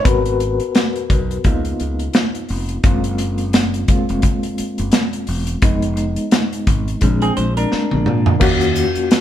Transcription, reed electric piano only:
0.05 B3 F#4 A#4 B4
1.45 A#3 B3 D#4 F4
2.84 G#3 A#3 C4 F4
3.89 G#3 A#3 C4 F4
5.62 G#3 B3 D#4
7.01 G#3 C4 D4
8.40 A#3 C#4 F4 F#4

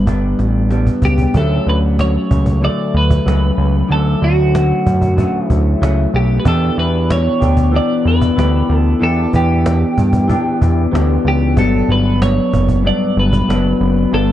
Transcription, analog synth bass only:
Already playing: G1
0.39 A1
1.02 C#2
1.34 D2
1.67 D2
2.31 C#2
2.94 D2
3.26 C#2
3.58 C#2
3.90 D2
4.22 D2
4.86 F#2
5.50 D2
5.81 C#2
6.13 B1
6.45 E2
6.78 E2
7.42 D2
8.05 E2
8.38 D2
8.69 D2
9.01 E2
9.34 E2
9.97 G2
10.62 E2
10.93 D2
11.25 C#2
11.57 G1
11.88 G1
12.53 F#1
13.17 G1
13.49 F#1
13.81 F#1
14.13 G1

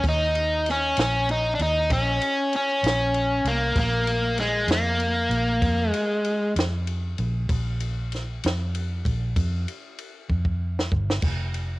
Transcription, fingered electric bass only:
0.04 D#2
0.98 A#1
1.59 D#2
1.90 A#1
2.83 A#1
3.45 C2
3.76 A#1
4.67 F2
5.29 A#1
5.62 F2
6.56 F2
7.19 A#1
7.50 A#1
8.45 F2
9.06 A#1
9.37 F2
10.30 F2
10.92 G1
11.23 F1

